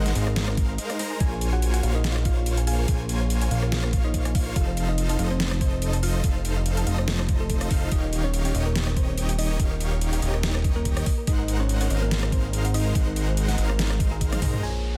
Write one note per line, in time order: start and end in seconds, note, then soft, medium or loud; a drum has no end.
0.00 0.14 G#1 loud
0.00 0.13 G#3 medium
0.00 0.13 D#4 medium
0.00 0.13 A#4 medium
0.00 0.13 C5 medium
0.00 0.13 F#5 medium
0.06 0.09 F#5 loud
0.06 snare soft
0.06 closed hi-hat medium
0.15 0.78 G#1 loud
0.15 0.98 G#3 medium
0.15 0.98 D#4 medium
0.15 0.98 A#4 medium
0.15 0.98 C5 medium
0.15 0.98 F5 loud
0.15 closed hi-hat medium
0.27 0.30 A#4 loud
0.27 cross-stick medium
0.36 0.39 G#4 loud
0.36 snare loud
0.36 closed hi-hat medium
0.48 0.51 A#4 medium
0.48 cross-stick medium
0.57 kick loud
0.57 closed hi-hat medium
0.69 0.72 A#5 medium
0.78 0.85 D#5 medium
0.78 closed hi-hat medium
0.90 0.93 D#5 loud
0.90 cross-stick medium
0.90 closed hi-hat medium
0.99 1.18 G#3 medium
0.99 1.18 D#4 medium
0.99 1.18 A#4 medium
0.99 1.18 C5 medium
0.99 1.18 A#5 loud
0.99 open hi-hat loud
1.11 1.13 G#5 medium
1.20 1.81 A#1 loud
1.20 1.81 A#3 medium
1.20 1.81 F4 medium
1.20 1.47 G#4 medium
1.20 1.23 G#4 loud
1.20 1.81 C5 medium
1.20 1.81 C#5 medium
1.20 1.47 G#5 loud
1.20 1.81 G#5 medium
1.20 kick loud
1.20 closed hi-hat medium
1.32 1.35 A#4 medium
1.41 closed hi-hat medium
1.53 1.70 F#4 medium
1.53 1.58 C#5 loud
1.53 1.70 F#5 medium
1.62 closed hi-hat medium
1.74 1.91 F#4 medium
1.74 1.91 F#5 medium
1.74 1.77 G#5 loud
1.74 closed hi-hat medium
1.83 2.86 A#1 loud
1.83 2.86 A#3 medium
1.83 2.86 F4 medium
1.83 2.86 C5 medium
1.83 2.86 C#5 medium
1.83 1.86 F5 loud
1.83 2.86 F5 loud
1.83 closed hi-hat medium
1.95 2.20 D#4 medium
1.95 1.98 A#4 loud
1.95 2.20 D#5 medium
2.04 2.07 G#4 loud
2.04 snare loud
2.04 closed hi-hat medium
2.16 2.19 A#4 medium
2.16 cross-stick medium
2.25 2.61 F4 medium
2.25 2.61 F5 medium
2.25 kick loud
2.25 closed hi-hat medium
2.37 2.42 C#5 loud
2.46 closed hi-hat medium
2.57 2.61 G#5 loud
2.57 closed hi-hat medium
2.67 3.03 G#4 medium
2.67 2.70 F5 loud
2.67 3.03 G#5 loud
2.67 open hi-hat loud
2.79 2.82 A#4 loud
2.88 3.49 A#1 loud
2.88 3.49 A#3 medium
2.88 3.49 F4 medium
2.88 2.91 G#4 loud
2.88 3.49 C5 medium
2.88 3.49 C#5 medium
2.88 3.49 G#5 medium
2.88 kick loud
2.88 closed hi-hat medium
3.00 3.03 A#4 medium
3.09 closed hi-hat medium
3.21 3.26 C#5 loud
3.30 closed hi-hat medium
3.42 3.45 G#5 loud
3.42 closed hi-hat medium
3.51 4.54 A#1 loud
3.51 4.54 A#3 medium
3.51 4.54 F4 medium
3.51 4.54 C5 medium
3.51 4.54 C#5 medium
3.51 3.54 F5 loud
3.51 4.54 F5 loud
3.51 closed hi-hat medium
3.62 3.66 A#4 loud
3.62 cross-stick medium
3.72 3.75 G#4 loud
3.72 snare loud
3.72 closed hi-hat medium
3.83 3.87 A#4 medium
3.83 cross-stick medium
3.93 kick loud
3.93 closed hi-hat medium
4.04 4.30 D#4 medium
4.04 4.10 C#5 loud
4.04 4.30 D#5 loud
4.14 kick medium
4.14 closed hi-hat medium
4.25 4.29 G#5 loud
4.25 cross-stick medium
4.25 closed hi-hat medium
4.35 4.38 F5 loud
4.35 kick loud
4.35 open hi-hat medium
4.46 4.50 A#4 loud
4.56 5.17 F1 loud
4.56 5.17 F3 medium
4.56 5.17 D#4 medium
4.56 4.83 F4 medium
4.56 4.58 A4 loud
4.56 5.17 A4 medium
4.56 5.17 C5 medium
4.56 4.83 F5 loud
4.56 5.17 F5 medium
4.56 kick loud
4.56 closed hi-hat medium
4.67 4.71 C5 medium
4.77 closed hi-hat medium
4.88 5.06 D#4 medium
4.88 4.94 D#5 loud
4.88 5.06 D#5 medium
4.98 closed hi-hat medium
5.09 5.27 D#4 medium
5.09 5.27 D#5 medium
5.09 5.13 A5 loud
5.09 closed hi-hat medium
5.19 6.22 F1 loud
5.19 6.22 F3 medium
5.19 6.22 D#4 medium
5.19 6.22 A4 medium
5.19 6.22 C5 medium
5.19 6.22 D#5 loud
5.19 5.21 F5 loud
5.19 closed hi-hat medium
5.30 5.56 C4 medium
5.30 5.34 C5 loud
5.30 5.56 C5 loud
5.40 5.42 A4 loud
5.40 snare loud
5.40 closed hi-hat medium
5.51 5.55 C5 medium
5.51 cross-stick medium
5.61 5.97 C4 medium
5.61 5.97 C5 loud
5.61 kick loud
5.61 closed hi-hat medium
5.72 5.77 D#5 loud
5.82 closed hi-hat medium
5.93 5.97 A5 loud
5.93 closed hi-hat medium
6.03 6.38 F4 medium
6.03 6.05 F5 loud
6.03 6.38 F5 loud
6.03 open hi-hat medium
6.14 6.18 C5 loud
6.24 6.85 F1 loud
6.24 6.85 F3 medium
6.24 6.85 D#4 medium
6.24 6.85 A4 medium
6.24 6.26 A4 loud
6.24 6.85 C5 medium
6.24 6.85 F5 medium
6.24 kick loud
6.24 closed hi-hat medium
6.35 6.39 C5 medium
6.45 closed hi-hat medium
6.56 6.61 D#5 loud
6.66 closed hi-hat medium
6.77 6.81 A5 loud
6.77 closed hi-hat medium
6.87 7.69 F1 loud
6.87 7.69 F3 medium
6.87 7.69 D#4 medium
6.87 7.69 A4 medium
6.87 7.69 C5 medium
6.87 7.69 D#5 loud
6.87 6.89 F5 loud
6.87 closed hi-hat medium
6.98 7.02 C5 loud
6.98 cross-stick medium
7.08 7.10 A4 loud
7.08 snare loud
7.08 closed hi-hat medium
7.19 7.23 C5 medium
7.19 cross-stick medium
7.29 kick loud
7.29 closed hi-hat medium
7.40 7.66 A3 medium
7.40 7.66 A4 medium
7.40 7.45 D#5 medium
7.50 7.54 A4 medium
7.50 kick medium
7.50 closed hi-hat medium
7.61 7.66 F5 medium
7.61 cross-stick medium
7.61 closed hi-hat medium
7.71 7.90 F1 loud
7.71 7.89 F3 medium
7.71 7.89 D#4 medium
7.71 7.89 A4 medium
7.71 7.89 C5 medium
7.71 7.89 F5 medium
7.71 kick loud
7.71 open hi-hat medium
7.82 7.86 D#5 medium
7.92 8.53 D#1 loud
7.92 8.52 D#3 medium
7.92 8.52 D#4 medium
7.92 8.18 D#4 medium
7.92 7.94 G4 loud
7.92 8.52 G4 medium
7.92 8.52 C#5 medium
7.92 8.18 D#5 loud
7.92 8.52 F5 medium
7.92 kick loud
7.92 closed hi-hat medium
8.03 8.07 A#4 medium
8.13 closed hi-hat medium
8.24 8.41 C#4 medium
8.24 8.41 C#5 medium
8.24 8.29 C#5 loud
8.34 closed hi-hat medium
8.45 8.62 C#4 medium
8.45 8.62 C#5 medium
8.45 8.49 G5 loud
8.45 closed hi-hat medium
8.55 9.58 D#1 loud
8.55 9.57 D#3 medium
8.55 9.57 D#4 medium
8.55 9.57 G4 medium
8.55 9.57 C#5 medium
8.55 9.57 D#5 loud
8.55 8.57 D#5 loud
8.55 closed hi-hat medium
8.66 8.92 A#3 medium
8.66 8.92 A#4 loud
8.66 8.69 A#4 loud
8.76 8.78 G4 loud
8.76 snare loud
8.76 closed hi-hat medium
8.87 8.91 A#4 medium
8.87 cross-stick medium
8.96 9.32 C4 medium
8.96 9.32 C5 medium
8.96 kick loud
8.96 closed hi-hat medium
9.08 9.13 C#5 loud
9.18 closed hi-hat medium
9.29 9.33 G5 loud
9.29 closed hi-hat medium
9.38 9.74 D#4 medium
9.38 9.74 D#5 medium
9.38 9.41 D#5 loud
9.38 open hi-hat medium
9.50 9.54 A#4 loud
9.60 10.21 D#1 loud
9.60 10.20 D#3 medium
9.60 10.20 D#4 medium
9.60 10.20 G4 medium
9.60 9.62 G4 loud
9.60 10.20 C#5 medium
9.60 10.20 F5 medium
9.60 kick loud
9.60 closed hi-hat medium
9.71 9.74 A#4 medium
9.80 closed hi-hat medium
9.92 9.97 C#5 loud
10.01 closed hi-hat medium
10.13 10.16 G5 loud
10.13 closed hi-hat medium
10.22 11.03 D#1 loud
10.22 11.05 D#3 medium
10.22 11.05 D#4 medium
10.22 11.05 G4 medium
10.22 11.05 C#5 medium
10.22 11.05 D#5 loud
10.22 10.25 D#5 loud
10.22 closed hi-hat medium
10.34 10.37 A#4 loud
10.34 cross-stick medium
10.43 10.46 G4 loud
10.43 snare loud
10.43 closed hi-hat medium
10.55 10.58 A#4 medium
10.55 cross-stick medium
10.64 kick loud
10.64 closed hi-hat medium
10.76 11.01 A#3 medium
10.76 11.01 A#4 loud
10.76 10.81 C#5 loud
10.85 kick medium
10.85 closed hi-hat medium
10.97 11.00 G5 loud
10.97 cross-stick medium
10.97 closed hi-hat medium
11.06 11.09 D#5 loud
11.06 kick loud
11.06 open hi-hat medium
11.18 11.21 A#4 loud
11.27 11.88 G#1 loud
11.27 11.88 G#3 medium
11.27 11.88 D#4 medium
11.27 11.54 D#4 medium
11.27 11.30 G#4 loud
11.27 11.88 A#4 medium
11.27 11.88 C5 medium
11.27 11.54 D#5 loud
11.27 11.88 F#5 medium
11.27 kick loud
11.27 closed hi-hat medium
11.39 11.42 A#4 medium
11.48 closed hi-hat medium
11.60 11.77 C#4 medium
11.60 11.65 C5 loud
11.60 11.77 C#5 medium
11.69 closed hi-hat medium
11.81 11.98 C#4 medium
11.81 11.98 C#5 medium
11.81 11.84 F#5 loud
11.81 closed hi-hat medium
11.90 12.93 G#1 loud
11.90 12.93 G#3 medium
11.90 12.93 D#4 medium
11.90 12.93 A#4 medium
11.90 12.93 C5 medium
11.90 11.93 D#5 loud
11.90 12.93 F5 medium
11.90 closed hi-hat medium
12.02 12.27 A#3 medium
12.02 12.05 A#4 loud
12.02 12.27 A#4 medium
12.11 12.14 G#4 loud
12.11 snare loud
12.11 closed hi-hat medium
12.23 12.26 A#4 medium
12.23 cross-stick medium
12.32 12.68 C4 medium
12.32 12.68 C5 loud
12.32 kick loud
12.32 closed hi-hat medium
12.44 12.49 C5 loud
12.53 closed hi-hat medium
12.65 12.68 F#5 loud
12.65 closed hi-hat medium
12.74 13.10 D#4 medium
12.74 13.10 D#5 loud
12.74 12.77 D#5 loud
12.74 open hi-hat loud
12.86 12.89 A#4 loud
12.95 13.56 G#1 loud
12.95 13.56 G#3 medium
12.95 13.56 D#4 medium
12.95 12.98 G#4 loud
12.95 13.56 A#4 medium
12.95 13.56 C5 medium
12.95 13.56 F#5 medium
12.95 kick loud
12.95 closed hi-hat medium
13.07 13.10 A#4 medium
13.16 closed hi-hat medium
13.28 13.33 C5 loud
13.37 closed hi-hat medium
13.49 13.52 F#5 loud
13.49 snare soft
13.49 closed hi-hat medium
13.58 14.40 G#1 loud
13.58 14.40 G#3 medium
13.58 14.40 D#4 medium
13.58 14.40 A#4 medium
13.58 14.40 C5 medium
13.58 13.61 D#5 loud
13.58 14.40 F5 medium
13.58 closed hi-hat medium
13.70 13.73 A#4 loud
13.70 cross-stick medium
13.79 13.82 G#4 loud
13.79 snare loud
13.79 closed hi-hat medium
13.90 13.94 A#4 medium
13.90 cross-stick medium
14.00 kick loud
14.00 closed hi-hat medium
14.11 14.37 G#3 medium
14.11 14.37 G#4 loud
14.11 14.15 A#5 medium
14.21 14.27 D#5 medium
14.21 kick medium
14.21 closed hi-hat medium
14.32 14.36 D#5 loud
14.32 cross-stick medium
14.32 closed hi-hat medium
14.32 high tom medium
14.42 14.61 G#2 loud
14.42 14.61 G#3 medium
14.42 14.61 D#4 medium
14.42 14.61 A#4 medium
14.42 14.61 C5 medium
14.42 14.61 A#5 loud
14.42 kick loud
14.42 open hi-hat loud
14.42 mid tom medium
14.53 14.56 G#5 medium
14.53 mid tom medium
14.61 14.97 A#1 medium
14.61 14.97 A#3 medium
14.61 14.97 F4 medium
14.61 14.97 G#4 medium
14.61 14.97 C5 medium
14.61 14.97 C#5 medium
14.61 14.90 G#5 loud
14.61 downlifter medium